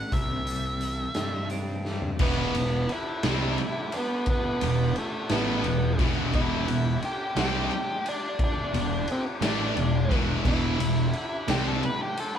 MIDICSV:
0, 0, Header, 1, 6, 480
1, 0, Start_track
1, 0, Key_signature, 1, "minor"
1, 0, Tempo, 688073
1, 98, Time_signature, 6, 3, 24, 8
1, 8641, End_track
2, 0, Start_track
2, 0, Title_t, "Lead electric guitar"
2, 0, Program_c, 0, 29
2, 0, Note_on_c, 0, 78, 89
2, 93, Note_on_c, 0, 76, 86
2, 109, Note_off_c, 0, 78, 0
2, 1030, Note_off_c, 0, 76, 0
2, 1548, Note_on_c, 0, 59, 80
2, 2040, Note_off_c, 0, 59, 0
2, 2040, Note_on_c, 0, 64, 81
2, 2255, Note_off_c, 0, 64, 0
2, 2277, Note_on_c, 0, 64, 102
2, 2747, Note_on_c, 0, 59, 82
2, 2764, Note_off_c, 0, 64, 0
2, 2992, Note_off_c, 0, 59, 0
2, 2999, Note_on_c, 0, 59, 86
2, 3473, Note_off_c, 0, 59, 0
2, 3476, Note_on_c, 0, 57, 90
2, 3701, Note_off_c, 0, 57, 0
2, 3704, Note_on_c, 0, 59, 94
2, 4215, Note_off_c, 0, 59, 0
2, 4430, Note_on_c, 0, 64, 94
2, 4877, Note_off_c, 0, 64, 0
2, 4917, Note_on_c, 0, 67, 104
2, 5148, Note_off_c, 0, 67, 0
2, 5156, Note_on_c, 0, 67, 100
2, 5641, Note_on_c, 0, 62, 102
2, 5642, Note_off_c, 0, 67, 0
2, 5877, Note_off_c, 0, 62, 0
2, 5889, Note_on_c, 0, 62, 98
2, 6325, Note_off_c, 0, 62, 0
2, 6359, Note_on_c, 0, 60, 89
2, 6421, Note_off_c, 0, 60, 0
2, 6594, Note_on_c, 0, 62, 92
2, 7097, Note_off_c, 0, 62, 0
2, 7310, Note_on_c, 0, 64, 93
2, 8023, Note_off_c, 0, 64, 0
2, 8026, Note_on_c, 0, 67, 98
2, 8145, Note_off_c, 0, 67, 0
2, 8146, Note_on_c, 0, 69, 83
2, 8266, Note_off_c, 0, 69, 0
2, 8266, Note_on_c, 0, 71, 95
2, 8384, Note_off_c, 0, 71, 0
2, 8387, Note_on_c, 0, 67, 95
2, 8508, Note_off_c, 0, 67, 0
2, 8508, Note_on_c, 0, 69, 103
2, 8620, Note_off_c, 0, 69, 0
2, 8641, End_track
3, 0, Start_track
3, 0, Title_t, "Clean electric guitar"
3, 0, Program_c, 1, 27
3, 0, Note_on_c, 1, 50, 66
3, 0, Note_on_c, 1, 57, 67
3, 0, Note_on_c, 1, 62, 66
3, 92, Note_off_c, 1, 62, 0
3, 92, Note_on_c, 1, 48, 81
3, 94, Note_off_c, 1, 57, 0
3, 96, Note_off_c, 1, 50, 0
3, 331, Note_on_c, 1, 55, 68
3, 577, Note_on_c, 1, 52, 65
3, 805, Note_off_c, 1, 55, 0
3, 814, Note_on_c, 1, 55, 70
3, 1054, Note_on_c, 1, 60, 72
3, 1284, Note_off_c, 1, 55, 0
3, 1292, Note_on_c, 1, 55, 67
3, 1298, Note_off_c, 1, 48, 0
3, 1537, Note_off_c, 1, 55, 0
3, 1538, Note_off_c, 1, 60, 0
3, 1540, Note_off_c, 1, 52, 0
3, 8641, End_track
4, 0, Start_track
4, 0, Title_t, "Distorted electric guitar"
4, 0, Program_c, 2, 30
4, 1534, Note_on_c, 2, 40, 99
4, 1538, Note_on_c, 2, 47, 89
4, 1540, Note_on_c, 2, 52, 123
4, 1768, Note_off_c, 2, 40, 0
4, 1773, Note_off_c, 2, 47, 0
4, 1774, Note_off_c, 2, 52, 0
4, 1776, Note_on_c, 2, 40, 59
4, 1783, Note_on_c, 2, 47, 79
4, 1971, Note_off_c, 2, 40, 0
4, 1974, Note_off_c, 2, 47, 0
4, 2266, Note_on_c, 2, 48, 100
4, 2268, Note_on_c, 2, 60, 121
4, 2272, Note_on_c, 2, 55, 102
4, 2497, Note_off_c, 2, 48, 0
4, 2498, Note_off_c, 2, 60, 0
4, 2500, Note_off_c, 2, 55, 0
4, 3231, Note_on_c, 2, 40, 64
4, 3233, Note_on_c, 2, 47, 68
4, 3419, Note_off_c, 2, 40, 0
4, 3419, Note_off_c, 2, 47, 0
4, 3712, Note_on_c, 2, 52, 101
4, 3713, Note_on_c, 2, 45, 106
4, 3718, Note_on_c, 2, 57, 115
4, 3940, Note_off_c, 2, 45, 0
4, 3940, Note_off_c, 2, 52, 0
4, 3942, Note_off_c, 2, 57, 0
4, 3953, Note_on_c, 2, 40, 71
4, 3957, Note_on_c, 2, 47, 80
4, 4139, Note_off_c, 2, 40, 0
4, 4141, Note_off_c, 2, 47, 0
4, 4188, Note_on_c, 2, 40, 93
4, 4196, Note_on_c, 2, 47, 102
4, 4197, Note_on_c, 2, 52, 103
4, 4417, Note_off_c, 2, 40, 0
4, 4418, Note_off_c, 2, 47, 0
4, 4422, Note_off_c, 2, 52, 0
4, 4426, Note_on_c, 2, 40, 100
4, 4426, Note_on_c, 2, 47, 100
4, 4433, Note_on_c, 2, 52, 109
4, 4656, Note_off_c, 2, 40, 0
4, 4656, Note_off_c, 2, 47, 0
4, 4659, Note_off_c, 2, 52, 0
4, 4672, Note_on_c, 2, 40, 69
4, 4674, Note_on_c, 2, 47, 72
4, 4858, Note_off_c, 2, 40, 0
4, 4859, Note_off_c, 2, 47, 0
4, 5147, Note_on_c, 2, 48, 89
4, 5150, Note_on_c, 2, 55, 97
4, 5152, Note_on_c, 2, 60, 100
4, 5376, Note_off_c, 2, 48, 0
4, 5378, Note_off_c, 2, 55, 0
4, 5379, Note_off_c, 2, 60, 0
4, 6097, Note_on_c, 2, 40, 61
4, 6098, Note_on_c, 2, 47, 70
4, 6290, Note_off_c, 2, 40, 0
4, 6290, Note_off_c, 2, 47, 0
4, 6576, Note_on_c, 2, 45, 91
4, 6577, Note_on_c, 2, 52, 98
4, 6579, Note_on_c, 2, 57, 99
4, 6810, Note_off_c, 2, 45, 0
4, 6810, Note_off_c, 2, 52, 0
4, 6812, Note_off_c, 2, 57, 0
4, 6821, Note_on_c, 2, 40, 65
4, 6823, Note_on_c, 2, 47, 74
4, 7011, Note_off_c, 2, 40, 0
4, 7012, Note_off_c, 2, 47, 0
4, 7058, Note_on_c, 2, 40, 92
4, 7060, Note_on_c, 2, 47, 94
4, 7060, Note_on_c, 2, 52, 95
4, 7290, Note_off_c, 2, 40, 0
4, 7291, Note_off_c, 2, 47, 0
4, 7291, Note_off_c, 2, 52, 0
4, 7303, Note_on_c, 2, 40, 92
4, 7303, Note_on_c, 2, 47, 108
4, 7308, Note_on_c, 2, 52, 103
4, 7533, Note_off_c, 2, 40, 0
4, 7533, Note_off_c, 2, 47, 0
4, 7535, Note_off_c, 2, 52, 0
4, 7541, Note_on_c, 2, 40, 70
4, 7544, Note_on_c, 2, 47, 78
4, 7731, Note_off_c, 2, 40, 0
4, 7732, Note_off_c, 2, 47, 0
4, 8019, Note_on_c, 2, 48, 105
4, 8020, Note_on_c, 2, 55, 95
4, 8024, Note_on_c, 2, 60, 103
4, 8250, Note_off_c, 2, 48, 0
4, 8251, Note_off_c, 2, 55, 0
4, 8253, Note_off_c, 2, 60, 0
4, 8641, End_track
5, 0, Start_track
5, 0, Title_t, "Picked electric bass"
5, 0, Program_c, 3, 34
5, 85, Note_on_c, 3, 36, 114
5, 734, Note_off_c, 3, 36, 0
5, 809, Note_on_c, 3, 43, 78
5, 1456, Note_off_c, 3, 43, 0
5, 1532, Note_on_c, 3, 28, 113
5, 1760, Note_off_c, 3, 28, 0
5, 1772, Note_on_c, 3, 28, 84
5, 2000, Note_off_c, 3, 28, 0
5, 2261, Note_on_c, 3, 36, 81
5, 2485, Note_off_c, 3, 36, 0
5, 3225, Note_on_c, 3, 28, 80
5, 3447, Note_off_c, 3, 28, 0
5, 3706, Note_on_c, 3, 33, 89
5, 3927, Note_off_c, 3, 33, 0
5, 3935, Note_on_c, 3, 28, 86
5, 4161, Note_off_c, 3, 28, 0
5, 4178, Note_on_c, 3, 28, 84
5, 4403, Note_off_c, 3, 28, 0
5, 4420, Note_on_c, 3, 28, 103
5, 4643, Note_off_c, 3, 28, 0
5, 4665, Note_on_c, 3, 28, 81
5, 4886, Note_off_c, 3, 28, 0
5, 5143, Note_on_c, 3, 36, 94
5, 5365, Note_off_c, 3, 36, 0
5, 6092, Note_on_c, 3, 28, 78
5, 6318, Note_off_c, 3, 28, 0
5, 6567, Note_on_c, 3, 33, 81
5, 6795, Note_off_c, 3, 33, 0
5, 6813, Note_on_c, 3, 28, 76
5, 7039, Note_off_c, 3, 28, 0
5, 7048, Note_on_c, 3, 28, 81
5, 7275, Note_off_c, 3, 28, 0
5, 7288, Note_on_c, 3, 28, 96
5, 7515, Note_off_c, 3, 28, 0
5, 7527, Note_on_c, 3, 28, 75
5, 7755, Note_off_c, 3, 28, 0
5, 8012, Note_on_c, 3, 36, 92
5, 8237, Note_off_c, 3, 36, 0
5, 8641, End_track
6, 0, Start_track
6, 0, Title_t, "Drums"
6, 83, Note_on_c, 9, 42, 73
6, 86, Note_on_c, 9, 36, 88
6, 153, Note_off_c, 9, 42, 0
6, 156, Note_off_c, 9, 36, 0
6, 326, Note_on_c, 9, 42, 66
6, 396, Note_off_c, 9, 42, 0
6, 562, Note_on_c, 9, 42, 55
6, 632, Note_off_c, 9, 42, 0
6, 799, Note_on_c, 9, 42, 77
6, 802, Note_on_c, 9, 38, 106
6, 869, Note_off_c, 9, 42, 0
6, 871, Note_off_c, 9, 38, 0
6, 1043, Note_on_c, 9, 42, 58
6, 1113, Note_off_c, 9, 42, 0
6, 1290, Note_on_c, 9, 38, 54
6, 1360, Note_off_c, 9, 38, 0
6, 1409, Note_on_c, 9, 43, 70
6, 1479, Note_off_c, 9, 43, 0
6, 1528, Note_on_c, 9, 49, 109
6, 1533, Note_on_c, 9, 36, 114
6, 1598, Note_off_c, 9, 49, 0
6, 1603, Note_off_c, 9, 36, 0
6, 1776, Note_on_c, 9, 51, 80
6, 1846, Note_off_c, 9, 51, 0
6, 2016, Note_on_c, 9, 51, 78
6, 2086, Note_off_c, 9, 51, 0
6, 2254, Note_on_c, 9, 51, 103
6, 2256, Note_on_c, 9, 38, 120
6, 2323, Note_off_c, 9, 51, 0
6, 2326, Note_off_c, 9, 38, 0
6, 2496, Note_on_c, 9, 51, 78
6, 2566, Note_off_c, 9, 51, 0
6, 2735, Note_on_c, 9, 51, 81
6, 2805, Note_off_c, 9, 51, 0
6, 2971, Note_on_c, 9, 51, 104
6, 2978, Note_on_c, 9, 36, 101
6, 3041, Note_off_c, 9, 51, 0
6, 3048, Note_off_c, 9, 36, 0
6, 3217, Note_on_c, 9, 51, 87
6, 3287, Note_off_c, 9, 51, 0
6, 3458, Note_on_c, 9, 51, 80
6, 3527, Note_off_c, 9, 51, 0
6, 3693, Note_on_c, 9, 51, 99
6, 3696, Note_on_c, 9, 38, 112
6, 3763, Note_off_c, 9, 51, 0
6, 3766, Note_off_c, 9, 38, 0
6, 3934, Note_on_c, 9, 51, 80
6, 4004, Note_off_c, 9, 51, 0
6, 4178, Note_on_c, 9, 51, 82
6, 4179, Note_on_c, 9, 36, 112
6, 4248, Note_off_c, 9, 36, 0
6, 4248, Note_off_c, 9, 51, 0
6, 4419, Note_on_c, 9, 51, 91
6, 4420, Note_on_c, 9, 36, 93
6, 4488, Note_off_c, 9, 51, 0
6, 4489, Note_off_c, 9, 36, 0
6, 4661, Note_on_c, 9, 51, 78
6, 4730, Note_off_c, 9, 51, 0
6, 4900, Note_on_c, 9, 51, 77
6, 4970, Note_off_c, 9, 51, 0
6, 5137, Note_on_c, 9, 51, 100
6, 5140, Note_on_c, 9, 38, 110
6, 5207, Note_off_c, 9, 51, 0
6, 5210, Note_off_c, 9, 38, 0
6, 5376, Note_on_c, 9, 51, 68
6, 5445, Note_off_c, 9, 51, 0
6, 5620, Note_on_c, 9, 51, 71
6, 5690, Note_off_c, 9, 51, 0
6, 5854, Note_on_c, 9, 36, 101
6, 5855, Note_on_c, 9, 51, 94
6, 5924, Note_off_c, 9, 36, 0
6, 5924, Note_off_c, 9, 51, 0
6, 6098, Note_on_c, 9, 51, 80
6, 6168, Note_off_c, 9, 51, 0
6, 6331, Note_on_c, 9, 51, 85
6, 6401, Note_off_c, 9, 51, 0
6, 6571, Note_on_c, 9, 51, 120
6, 6574, Note_on_c, 9, 38, 114
6, 6641, Note_off_c, 9, 51, 0
6, 6644, Note_off_c, 9, 38, 0
6, 6813, Note_on_c, 9, 51, 83
6, 6883, Note_off_c, 9, 51, 0
6, 7051, Note_on_c, 9, 36, 106
6, 7054, Note_on_c, 9, 51, 82
6, 7121, Note_off_c, 9, 36, 0
6, 7124, Note_off_c, 9, 51, 0
6, 7290, Note_on_c, 9, 36, 102
6, 7292, Note_on_c, 9, 49, 92
6, 7360, Note_off_c, 9, 36, 0
6, 7361, Note_off_c, 9, 49, 0
6, 7535, Note_on_c, 9, 51, 97
6, 7605, Note_off_c, 9, 51, 0
6, 7767, Note_on_c, 9, 51, 74
6, 7836, Note_off_c, 9, 51, 0
6, 8008, Note_on_c, 9, 51, 106
6, 8011, Note_on_c, 9, 38, 124
6, 8078, Note_off_c, 9, 51, 0
6, 8081, Note_off_c, 9, 38, 0
6, 8253, Note_on_c, 9, 51, 77
6, 8323, Note_off_c, 9, 51, 0
6, 8493, Note_on_c, 9, 51, 80
6, 8562, Note_off_c, 9, 51, 0
6, 8641, End_track
0, 0, End_of_file